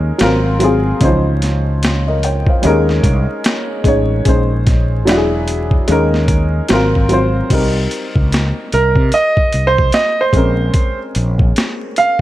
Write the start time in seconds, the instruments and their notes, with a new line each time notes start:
Already playing: fretless electric bass D#2, upright piano G#3 C#4 D#4 A#4
0.18 fretless electric bass G#1, upright piano F#3 C4 F4, snare, closed hi-hat
0.23 upright piano A#4
0.59 upright piano F#3 C4 F4, closed hi-hat
0.64 upright piano G#4
1.00 fretless electric bass C#2, upright piano E3 C#4 D#4, kick, closed hi-hat
1.05 upright piano F3 C5
1.42 snare, closed hi-hat
1.83 snare, closed hi-hat
2.08 upright piano A#4 D#5
2.23 upright piano C#5 G5, closed hi-hat
2.47 upright piano C5 F5, kick
2.62 fretless electric bass D#2, upright piano G3 C#4 D#4, closed hi-hat
2.66 upright piano G#3 A#4
2.89 snare
3.03 fretless electric bass C2, kick, closed hi-hat
3.44 snare, closed hi-hat
3.84 fretless electric bass A1, upright piano G#3 C#4 D#4, kick, closed hi-hat
3.88 upright piano C#5
4.25 fretless electric bass A#1, upright piano G#3 C#4 D#4, kick, closed hi-hat
4.29 upright piano C5
4.67 kick, snare, closed hi-hat
5.05 fretless electric bass E1, upright piano F#3 D4 E4, snare, closed hi-hat
5.10 upright piano F#4
5.17 upright piano G#4
5.48 closed hi-hat
5.71 kick
5.88 fretless electric bass D#2, upright piano G#3 C#4 D#4, closed hi-hat
5.92 upright piano A#4
6.14 snare
6.28 kick, closed hi-hat
6.68 fretless electric bass G#1, upright piano F#3 C4 F4, snare, closed hi-hat
6.73 upright piano A#4
6.95 kick
7.09 upright piano F#3 C4 F4, closed hi-hat
7.13 upright piano C5
7.49 fretless electric bass C2, upright piano G3 C4 D#4, kick, closed hi-hat, crash
7.54 upright piano A#4
7.91 closed hi-hat
8.16 fretless electric bass C#2, kick
8.32 snare, closed hi-hat
8.72 fretless electric bass C2, grand piano A#4, closed hi-hat
8.96 fretless electric bass C3, kick
9.12 grand piano D#5, closed hi-hat
9.37 muted fretless electric bass stroke, kick
9.53 fretless electric bass C2, closed hi-hat
9.67 grand piano C5
9.78 kick
9.92 grand piano D#5, snare, closed hi-hat
10.21 grand piano C5
10.32 fretless electric bass A#1, upright piano G#3 C4 C#4, kick, closed hi-hat
10.37 upright piano A#4
10.74 kick, closed hi-hat
11.15 fretless electric bass A#1, closed hi-hat
11.39 kick
11.56 snare, closed hi-hat
11.96 grand piano F5, closed hi-hat